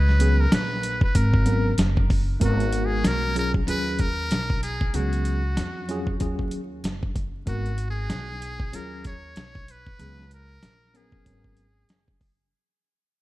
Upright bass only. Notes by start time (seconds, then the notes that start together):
Already playing: C#2
0.52 A#1
1.01 muted upright bass stroke
1.15 G#1
1.78 F#1
2.41 G#1
3.04 B1
3.68 D#2
4.31 B1
4.94 C#2
5.58 F2
6.21 D#2
6.84 F#1
7.47 G#1
8.11 B1
8.73 D#2
9.36 B1
9.99 C#2
10.63 A#1
11.26 G#1
11.90 F#1